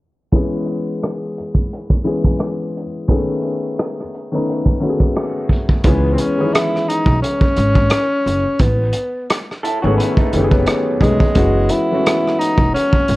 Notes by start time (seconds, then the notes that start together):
0.32 E3 G#3 B3 C#4 G#4, kick, closed hi-hat
0.66 closed hi-hat
1.03 cross-stick, closed hi-hat
1.38 closed hi-hat
1.55 kick
1.73 closed hi-hat
1.90 kick
2.04 E3 G#3 B3 C#4 G#4, closed hi-hat
2.24 kick
2.39 cross-stick, closed hi-hat
2.77 closed hi-hat
3.08 D#3 A3 B3 C#4 G#4, kick, closed hi-hat
3.42 closed hi-hat
3.79 cross-stick, closed hi-hat
4.00 cross-stick
4.14 closed hi-hat
4.32 D#3 A3 B3 C#4 D#4
4.49 closed hi-hat
4.66 kick
4.80 D#3 A3 B3 C#4 F#4, closed hi-hat
4.89 G#4
5.00 kick
5.16 cross-stick, closed hi-hat
5.49 kick, closed hi-hat
5.69 kick
5.84 C#2 E3 G#3 B3 C#4, kick, closed hi-hat
5.88 G#4
6.13 C4
6.18 C#4, closed hi-hat
6.38 D#3 G#3 B3 C#4 G#4
6.44 E3
6.54 E4, cross-stick, closed hi-hat
6.76 cross-stick
6.89 D#4, closed hi-hat
7.06 B1, kick
7.22 C#4, closed hi-hat
7.41 muted upright bass stroke, kick
7.56 G#1, closed hi-hat
7.75 kick
7.90 cross-stick, closed hi-hat
8.26 F#1, closed hi-hat
8.59 A1 B3, kick, closed hi-hat
8.93 closed hi-hat
9.30 cross-stick, closed hi-hat
9.51 cross-stick
9.63 E4 A4, closed hi-hat
9.82 G#1 D#3 A3 B3 C#4 F#4
9.87 G#4
9.98 B3 E4, closed hi-hat
10.17 A3 D#4, muted upright bass stroke, kick
10.33 F#1 D#3 A3 B3 C#4, closed hi-hat
10.38 G4
10.44 G#4
10.51 F#3 B3, kick
10.66 cross-stick, closed hi-hat
11.00 E1 D#3 G#3 A3 B3 C#4 G#4, kick, closed hi-hat
11.20 kick
11.35 F#1 E3 G#3 B3 C#4 F#4, kick, closed hi-hat
11.69 E4, closed hi-hat
11.91 E3 G#3 A3 C#4 F#4
11.99 B3
12.06 cross-stick, closed hi-hat
12.27 cross-stick
12.39 D#4, closed hi-hat
12.58 E1, kick
12.74 C#4, closed hi-hat
12.93 muted upright bass stroke, kick
13.08 G#1, closed hi-hat